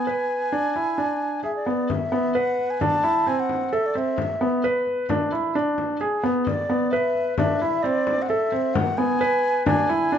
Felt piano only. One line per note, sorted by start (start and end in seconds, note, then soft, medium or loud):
0.07 0.48 B4 medium
0.52 0.73 D4 medium
0.76 0.96 E4 medium
0.98 1.39 D4 medium
1.44 1.64 G#4 medium
1.66 1.87 B3 medium
2.12 2.33 B3 medium
2.35 2.76 B4 medium
2.81 3.02 D4 medium
3.04 3.24 E4 medium
3.27 3.68 C4 medium
3.73 3.93 A4 medium
3.95 4.16 C4 medium
4.41 4.61 B3 medium
4.64 5.05 B4 medium
5.10 5.30 D4 medium
5.32 5.53 E4 medium
5.55 5.96 D4 medium
6.01 6.21 G#4 medium
6.24 6.44 B3 medium
6.70 6.90 B3 medium
6.93 7.33 B4 medium
7.39 7.59 D4 medium
7.62 7.82 E4 medium
7.84 8.25 C4 medium
8.30 8.50 A4 medium
8.52 8.72 C4 medium
8.98 9.18 B3 medium
9.21 9.62 B4 medium
9.66 9.87 D4 medium
9.89 10.10 E4 medium
10.12 10.18 D4 medium